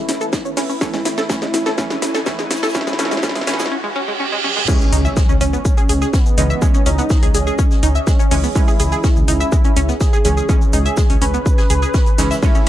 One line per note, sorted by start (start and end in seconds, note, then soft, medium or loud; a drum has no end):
0.00 0.79 E3 medium
0.00 0.77 A3 medium
0.00 0.79 A3 medium
0.00 0.79 C#4 loud
0.00 0.48 E4 loud
0.00 0.77 E4 medium
0.00 0.77 B4 medium
0.00 riser medium
0.09 0.12 E4 medium
0.09 snare medium
0.09 open hi-hat loud
0.09 shaker medium
0.21 0.26 A4 loud
0.21 shaker soft
0.33 0.40 D#4 medium
0.33 kick loud
0.33 snare medium
0.33 snare loud
0.33 shaker medium
0.45 0.50 C#4 medium
0.45 closed hi-hat soft
0.45 shaker soft
0.57 0.64 C#4 loud
0.57 0.79 E4 medium
0.57 snare medium
0.57 open hi-hat loud
0.57 open hi-hat medium
0.57 shaker medium
0.69 0.72 C#4 medium
0.69 shaker soft
0.81 1.28 E3 medium
0.81 1.28 A3 medium
0.81 1.28 C#4 loud
0.81 0.86 C#4 medium
0.81 1.28 E4 loud
0.81 3.69 F#4 medium
0.81 3.69 C#5 medium
0.81 3.69 G#5 medium
0.81 kick loud
0.81 snare medium
0.81 shaker medium
0.94 0.98 G#3 medium
0.94 snare medium
0.94 shaker soft
1.05 1.08 E4 medium
1.05 snare medium
1.05 open hi-hat loud
1.05 shaker medium
1.18 1.23 A4 loud
1.18 snare medium
1.18 shaker soft
1.30 1.76 E3 medium
1.30 1.76 A3 medium
1.30 1.76 C#4 loud
1.30 1.35 C#4 medium
1.30 1.76 E4 loud
1.30 kick loud
1.30 snare medium
1.30 snare loud
1.30 shaker medium
1.30 shaker loud
1.42 1.47 G#3 medium
1.42 snare medium
1.42 shaker soft
1.54 1.57 E4 medium
1.54 snare medium
1.54 open hi-hat loud
1.54 shaker medium
1.66 1.71 A4 loud
1.66 snare medium
1.66 shaker soft
1.78 2.24 E3 medium
1.78 2.25 A3 medium
1.78 2.25 C#4 loud
1.78 1.83 C#4 medium
1.78 2.25 E4 loud
1.78 kick loud
1.78 snare loud
1.78 shaker medium
1.90 1.95 G#3 medium
1.90 snare medium
1.90 closed hi-hat soft
1.90 shaker soft
2.02 2.05 E4 medium
2.02 snare loud
2.02 open hi-hat loud
2.02 shaker medium
2.15 2.19 A4 loud
2.15 snare medium
2.15 snare soft
2.15 shaker soft
2.26 2.73 E3 medium
2.26 2.73 A3 medium
2.26 2.31 C#4 medium
2.26 2.73 C#4 medium
2.26 2.73 E4 loud
2.26 kick loud
2.26 snare loud
2.26 shaker medium
2.39 2.43 G#3 medium
2.39 snare medium
2.39 shaker soft
2.51 2.54 E4 medium
2.51 snare loud
2.51 snare medium
2.51 open hi-hat loud
2.51 shaker medium
2.56 snare loud
2.56 shaker medium
2.62 2.68 A4 loud
2.62 snare medium
2.62 shaker soft
2.62 shaker medium
2.69 snare medium
2.69 shaker medium
2.74 2.97 E3 medium
2.74 2.97 A3 medium
2.74 2.80 C#4 medium
2.74 2.97 C#4 loud
2.74 2.97 E4 loud
2.74 kick loud
2.74 snare loud
2.74 shaker loud
2.74 shaker medium
2.81 snare medium
2.87 2.92 G#3 medium
2.87 snare medium
2.87 shaker soft
2.93 snare medium
2.99 3.21 E3 medium
2.99 3.21 A3 medium
2.99 3.04 C#4 medium
2.99 3.21 C#4 loud
2.99 3.21 E4 loud
2.99 snare loud
2.99 open hi-hat loud
2.99 shaker medium
3.05 snare medium
3.11 3.16 G#3 medium
3.11 snare medium
3.11 closed hi-hat soft
3.11 shaker soft
3.17 snare medium
3.23 3.45 E3 medium
3.23 3.45 A3 medium
3.23 3.28 C#4 medium
3.23 3.45 C#4 loud
3.23 3.45 E4 loud
3.23 kick loud
3.23 snare loud
3.23 shaker medium
3.29 snare loud
3.35 3.40 G#3 medium
3.35 snare medium
3.35 open hi-hat medium
3.35 shaker soft
3.41 snare medium
3.47 3.70 E3 medium
3.47 3.70 A3 medium
3.47 3.52 C#4 medium
3.47 3.70 C#4 loud
3.47 3.70 E4 loud
3.47 snare loud
3.47 open hi-hat loud
3.47 shaker medium
3.54 snare medium
3.59 3.64 G#3 medium
3.59 snare medium
3.59 snare loud
3.59 shaker medium
3.59 shaker soft
3.66 snare medium
3.71 3.76 C#4 medium
3.71 reverse cymbal medium
3.84 3.89 G#3 medium
3.96 4.01 C#4 medium
4.08 4.13 G#3 medium
4.20 4.25 C#4 medium
4.32 4.37 G#3 medium
4.44 4.49 C#4 medium
4.44 high tom medium
4.56 4.61 G#3 medium
4.56 mid tom medium
4.68 5.99 E3 medium
4.68 5.99 G#3 medium
4.68 4.73 C#4 medium
4.68 5.31 C#4 loud
4.68 5.99 C#4 loud
4.68 12.39 C#4 medium
4.68 12.39 G#4 medium
4.68 8.52 D#5 medium
4.68 kick loud
4.68 crash loud
4.68 impact medium
4.68 shaker medium
4.81 shaker soft
4.92 5.08 C#2 loud
4.92 4.97 D#4 medium
4.92 open hi-hat loud
4.92 shaker medium
5.05 5.10 E5 medium
5.05 shaker soft
5.16 5.22 G#3 medium
5.16 kick loud
5.16 snare loud
5.16 shaker medium
5.29 5.37 C#2 loud
5.29 5.36 C#4 medium
5.29 shaker soft
5.41 5.56 C#2 medium
5.41 6.15 C#4 loud
5.41 5.44 C#4 loud
5.41 open hi-hat loud
5.41 shaker medium
5.53 5.58 B3 medium
5.53 shaker soft
5.65 kick loud
5.65 shaker loud
5.65 shaker medium
5.77 5.82 G#4 medium
5.77 closed hi-hat soft
5.77 shaker soft
5.89 6.05 C#2 loud
5.89 5.92 G#4 medium
5.89 open hi-hat loud
5.89 shaker medium
6.01 6.09 G#4 medium
6.01 snare soft
6.01 shaker soft
6.13 6.77 B3 loud
6.13 6.18 C#4 medium
6.13 kick loud
6.13 snare loud
6.13 shaker medium
6.26 shaker soft
6.38 6.53 C#2 medium
6.38 6.59 E3 medium
6.38 6.59 G#3 medium
6.38 6.59 C#4 medium
6.38 6.43 D#4 medium
6.38 open hi-hat loud
6.38 shaker medium
6.50 6.55 E5 medium
6.50 shaker soft
6.62 7.92 E3 medium
6.62 6.67 G#3 medium
6.62 7.92 G#3 medium
6.62 7.92 C#4 loud
6.62 kick loud
6.62 shaker loud
6.62 shaker medium
6.74 6.81 C#4 medium
6.74 shaker soft
6.86 7.01 C#2 loud
6.86 6.89 C#4 loud
6.86 7.36 D#4 loud
6.86 open hi-hat loud
6.86 shaker medium
6.98 7.03 B3 medium
6.98 closed hi-hat soft
6.98 shaker soft
7.10 kick loud
7.10 snare loud
7.10 shaker medium
7.23 7.30 C#2 loud
7.23 7.27 G#4 medium
7.23 open hi-hat medium
7.23 shaker soft
7.34 7.50 C#2 medium
7.34 8.46 C#4 loud
7.34 7.37 G#4 medium
7.34 open hi-hat loud
7.34 shaker medium
7.47 7.54 G#4 medium
7.47 shaker soft
7.58 7.64 C#4 medium
7.58 kick loud
7.58 shaker medium
7.71 snare medium
7.71 shaker soft
7.83 7.98 C#2 medium
7.83 7.88 D#4 medium
7.83 open hi-hat loud
7.83 shaker medium
7.95 8.00 E5 medium
7.95 shaker soft
8.07 8.12 G#3 medium
8.07 kick loud
8.07 snare loud
8.07 shaker loud
8.07 shaker medium
8.19 8.27 C#4 medium
8.19 closed hi-hat soft
8.19 shaker medium
8.31 8.47 C#2 medium
8.31 8.53 E3 medium
8.31 8.53 G#3 medium
8.31 8.53 C#4 medium
8.31 8.34 C#4 loud
8.31 open hi-hat loud
8.31 open hi-hat medium
8.31 shaker medium
8.44 8.48 B3 medium
8.44 shaker soft
8.55 9.86 E3 medium
8.55 9.86 G#3 medium
8.55 9.86 C#4 loud
8.55 9.19 E4 loud
8.55 12.39 C#5 medium
8.55 kick loud
8.55 shaker medium
8.55 shaker loud
8.68 8.73 G#4 medium
8.68 shaker soft
8.79 8.95 C#2 loud
8.79 8.83 G#4 medium
8.79 open hi-hat loud
8.79 shaker medium
8.92 8.99 G#4 medium
8.92 shaker soft
9.04 9.09 C#4 medium
9.04 kick loud
9.04 snare loud
9.04 shaker medium
9.16 9.24 C#2 loud
9.16 shaker soft
9.28 9.43 C#2 medium
9.28 9.33 D#4 medium
9.28 9.91 E4 loud
9.28 open hi-hat loud
9.28 shaker medium
9.40 9.45 E5 medium
9.40 shaker soft
9.52 9.57 G#3 medium
9.52 kick loud
9.52 shaker medium
9.65 9.72 C#4 medium
9.65 closed hi-hat soft
9.65 shaker soft
9.76 9.92 C#2 loud
9.76 9.79 C#4 loud
9.76 open hi-hat loud
9.76 shaker medium
9.89 9.94 B3 medium
9.89 snare soft
9.89 shaker soft
10.00 10.64 G#4 loud
10.00 kick loud
10.00 snare loud
10.00 shaker medium
10.13 10.18 G#4 medium
10.13 shaker soft
10.25 10.40 C#2 medium
10.25 10.46 E3 medium
10.25 10.46 G#3 medium
10.25 10.46 C#4 medium
10.25 10.28 G#4 medium
10.25 open hi-hat loud
10.25 shaker medium
10.37 10.44 G#4 medium
10.37 shaker soft
10.49 11.79 E3 medium
10.49 11.79 G#3 medium
10.49 11.79 C#4 loud
10.49 10.54 C#4 medium
10.49 kick loud
10.49 shaker medium
10.61 shaker soft
10.73 10.89 C#2 loud
10.73 10.78 D#4 medium
10.73 11.18 G#4 loud
10.73 open hi-hat loud
10.73 shaker medium
10.85 10.90 E5 medium
10.85 closed hi-hat soft
10.85 shaker soft
10.97 11.02 G#3 medium
10.97 kick loud
10.97 snare loud
10.97 shaker medium
11.10 11.17 C#2 loud
11.10 11.17 C#4 medium
11.10 open hi-hat medium
11.10 shaker soft
11.22 11.37 C#2 medium
11.22 11.25 C#4 loud
11.22 12.33 B4 loud
11.22 open hi-hat loud
11.22 shaker medium
11.34 11.39 B3 medium
11.34 shaker soft
11.46 kick loud
11.46 shaker medium
11.46 shaker loud
11.58 11.63 G#4 medium
11.58 snare medium
11.58 shaker soft
11.70 11.85 C#2 loud
11.70 11.73 G#4 medium
11.70 open hi-hat loud
11.70 shaker medium
11.82 11.89 G#4 medium
11.82 shaker soft
11.94 11.99 C#4 medium
11.94 kick loud
11.94 snare loud
11.94 shaker medium
12.06 closed hi-hat soft
12.06 shaker soft
12.18 12.34 C#2 medium
12.18 12.40 E3 medium
12.18 12.40 G#3 medium
12.18 12.40 C#4 medium
12.18 12.23 D#4 medium
12.18 snare loud
12.18 open hi-hat loud
12.18 shaker medium
12.30 12.35 E5 medium
12.30 snare loud
12.30 shaker soft
12.30 shaker medium
12.43 12.69 E3 medium
12.43 12.48 G#3 medium
12.43 12.69 A3 medium
12.43 12.69 C#4 loud
12.43 12.69 E4 loud
12.43 kick loud
12.43 ride medium
12.43 shaker medium
12.55 12.62 C#4 medium
12.55 shaker soft